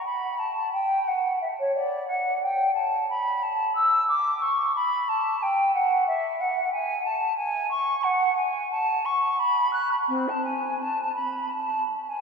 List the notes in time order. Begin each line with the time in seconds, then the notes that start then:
0.05 B5
0.39 A5
0.73 G5
1.07 F#5
1.41 E5
1.59 C#5
1.75 D5
2.07 F#5
2.42 G5
2.74 A5
3.10 B5
3.42 A5
3.75 E6
4.08 D6
4.41 C#6
4.75 B5
5.08 A5
5.42 G5
5.74 F#5
6.07 E5
6.40 F#5
6.72 G#5
7.05 A5
7.37 G#5
7.70 C#6
8.03 F#5
8.36 G#5
8.71 A5
9.05 C#6
9.39 B5
9.73 F#6
9.91 B5
10.08 C4
10.28 A5
10.44 G#5
10.80 A5
11.15 B5
11.52 A5
12.07 G#5